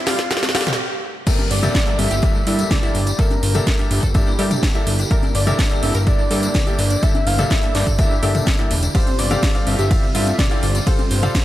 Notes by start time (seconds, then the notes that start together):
Already playing: G2 C3 G3 A3 F4 A4, riser
0.07 G3 C4 G4 A4 F5, snare, open hi-hat, high conga
0.19 C4, kick, snare
0.31 G3 C4 G4 A4 F5, kick, snare, closed hi-hat
0.37 snare
0.43 C4, snare, closed hi-hat
0.49 snare
0.55 G3 C4 G4 A4 F5, snare, open hi-hat
0.61 snare
0.67 C4, snare, closed hi-hat, mid tom
0.73 snare
1.27 G2 D3 A#3 E4 G4 A4 A#4 E5, kick, closed hi-hat, crash, tambourine, downlifter
1.38 G3, closed hi-hat, tambourine, high conga
1.51 G1 G3 D5, open hi-hat
1.63 G2 A#3 G4 A4 E5, closed hi-hat, mid tom, tambourine
1.75 G3, kick, snare, closed hi-hat, tambourine
1.87 G2 G3 A#3 G4 A4 E5, closed hi-hat, tambourine
1.99 G1 G3 E5, open hi-hat, high conga
2.11 G1 G4, closed hi-hat, tambourine
2.22 G2 G3 A#3 G4 A4 E5, kick, closed hi-hat, tambourine
2.35 G3, tambourine
2.47 G2 A#3 E4 G4 A4 E5, open hi-hat
2.58 G3, closed hi-hat, tambourine
2.71 G3 D5, kick, snare, closed hi-hat, mid tom, high conga
2.83 G2 A#3 E4 G4 A4 E5, closed hi-hat, tambourine
2.95 G1 G3, open hi-hat
3.07 G3, closed hi-hat, tambourine
3.19 G2 A#3 G4 A4 A#4 E5, kick, closed hi-hat, tambourine
3.30 D4, closed hi-hat, tambourine, high conga
3.43 G1 D4, open hi-hat
3.55 G2 A#3 G4 A4 E5, closed hi-hat, mid tom, tambourine
3.67 D4, kick, snare, closed hi-hat, tambourine
3.79 G2 A#3 D4 G4 A4 E5, closed hi-hat, tambourine
3.91 G1 D4, open hi-hat
4.03 G1 A4, kick, closed hi-hat, tambourine
4.14 G2 A#3 D4 G4 A4 E5, kick, closed hi-hat, tambourine
4.27 D4, tambourine
4.39 G2 A#3 G4 A4 E5, open hi-hat
4.51 D4, closed hi-hat, mid tom, tambourine
4.63 D4, kick, snare, closed hi-hat, tambourine, high conga
4.75 G2 A#3 E4 G4 A4 E5, closed hi-hat, tambourine
4.87 G1 D4, open hi-hat
4.99 D4, closed hi-hat, tambourine
5.11 G2 A#3 G4 A4 A#4 E5, kick, closed hi-hat, tambourine
5.23 D4, closed hi-hat, tambourine, high conga
5.35 G1 D4 D5, open hi-hat
5.47 G2 A#3 G4 A4 A#4 E5, closed hi-hat, mid tom, tambourine
5.59 D4, kick, snare, closed hi-hat, tambourine
5.71 G2 A#3 D4 G4 A4 E5, closed hi-hat, tambourine
5.83 G1 D4 E5, open hi-hat, high conga
5.95 G1 A#4, closed hi-hat, tambourine
6.07 G2 A#3 D4 G4 A4 D5 E5, kick, closed hi-hat, tambourine
6.19 D4, tambourine
6.31 G2 A#3 G4 A4 E5, open hi-hat
6.43 D4, closed hi-hat, tambourine
6.54 D4, kick, snare, closed hi-hat, mid tom, tambourine, high conga
6.67 G2 A#3 G4 A4 E5, closed hi-hat, tambourine
6.79 G1 D4, open hi-hat
6.90 D4, closed hi-hat, tambourine
7.03 G2 A#3 G4 A4 E5, kick, closed hi-hat, tambourine
7.14 D4, closed hi-hat, tambourine, high conga
7.27 G1 D4 F5, open hi-hat
7.39 G2 A#3 G4 A4 E5, mid tom, tambourine
7.50 D4 E5, kick, snare, closed hi-hat, tambourine
7.63 G2 A#3 D4 G4 A4 E5, closed hi-hat, tambourine
7.75 G1 D4 D5, snare, open hi-hat
7.87 G1 A4, kick, closed hi-hat, tambourine
7.98 G2 A#3 D4 G4 A4 E5, kick, closed hi-hat, tambourine
8.11 D4, tambourine
8.23 G1 G2 A#3 G4 A4 E5, open hi-hat
8.35 D4, closed hi-hat, mid tom, tambourine
8.47 D4, kick, snare, closed hi-hat, tambourine, high conga
8.59 G2 A#3 E4 G4 A4 E5, closed hi-hat, tambourine
8.71 E1 D4, open hi-hat
8.82 D4, tambourine
8.95 C3 G3 C4 F4 G4 A4 C5 F5, kick, closed hi-hat, ride, tambourine
9.07 C4, closed hi-hat, tambourine, high conga
9.19 G1 C4 D5, open hi-hat
9.31 G3 C4 G4 A4 F5, closed hi-hat, mid tom, tambourine
9.42 C4, kick, snare, closed hi-hat, ride, tambourine
9.55 G3 C4 G4 A4 F5, closed hi-hat, tambourine
9.67 G1 C4 E5, open hi-hat, high conga
9.79 G1 G4, closed hi-hat, tambourine
9.91 G3 C4 G4 A4 F5, kick, closed hi-hat, ride, tambourine
10.03 C4, tambourine
10.14 G2 G3 C4 F4 G4 A4 E5 F5, open hi-hat
10.27 C4, tambourine
10.39 C4 D5, kick, snare, closed hi-hat, mid tom, ride, tambourine, high conga
10.51 G3 C4 E4 G4 A4 F5, closed hi-hat, tambourine
10.63 G1 C4, open hi-hat
10.75 C4, closed hi-hat, tambourine
10.87 G3 C4 G4 A4 C5 F5, kick, closed hi-hat, ride, tambourine
10.98 C4, closed hi-hat, tambourine, high conga
11.11 G1 C4, open hi-hat
11.23 G3 C4 G4 A4 F5, closed hi-hat, mid tom, tambourine
11.35 C4, kick, snare, closed hi-hat, ride, tambourine